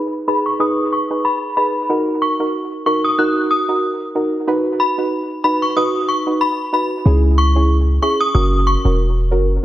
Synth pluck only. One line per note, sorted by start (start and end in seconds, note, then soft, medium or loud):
0.28 0.44 D#4 medium
0.28 0.44 G#4 medium
0.28 0.44 B4 medium
0.60 1.06 D#4 medium
0.60 1.06 G#4 medium
0.60 1.06 B4 loud
1.10 1.23 D#4 medium
1.10 1.24 G#4 medium
1.10 1.24 B4 medium
1.57 1.73 D#4 medium
1.57 1.73 G#4 medium
1.57 1.74 B4 medium
1.89 2.35 D#4 medium
1.89 2.36 F#4 medium
1.89 2.36 A#4 loud
2.40 2.52 D#4 medium
2.40 2.53 F#4 medium
2.40 2.53 A#4 medium
2.86 3.02 D#4 medium
2.86 3.03 F#4 medium
2.86 3.03 A#4 medium
3.18 3.64 D#4 medium
3.18 3.65 F#4 medium
3.18 3.65 A#4 loud
3.68 3.81 D#4 medium
3.68 3.82 F#4 medium
3.68 3.82 A#4 medium
4.15 4.32 D#4 medium
4.15 4.32 F#4 medium
4.15 4.32 A#4 medium
4.47 4.93 D#4 medium
4.47 4.94 F#4 medium
4.47 4.94 B4 loud
4.98 5.11 D#4 medium
4.98 5.11 F#4 medium
4.98 5.11 B4 medium
5.44 5.60 D#4 medium
5.44 5.61 F#4 medium
5.44 5.61 B4 medium
5.76 6.22 D#4 loud
5.76 6.23 F#4 medium
5.76 6.23 B4 loud
6.27 6.40 D#4 medium
6.27 6.40 F#4 medium
6.27 6.40 B4 medium
6.73 6.89 D#4 medium
6.73 6.89 F#4 medium
6.73 6.90 B4 medium
7.05 7.52 C#4 medium
7.05 7.52 E4 medium
7.05 7.52 G#4 loud
7.56 7.69 C#4 medium
7.56 7.69 E4 medium
7.56 7.69 G#4 medium
8.02 8.19 C#4 medium
8.02 8.19 E4 medium
8.02 8.19 G#4 medium
8.34 8.80 C#4 medium
8.34 8.81 F#4 medium
8.34 8.81 A#4 loud
8.85 8.98 C#4 medium
8.85 8.98 F#4 medium
8.85 8.98 A#4 medium
9.31 9.48 C#4 medium
9.31 9.48 F#4 medium
9.31 9.48 A#4 medium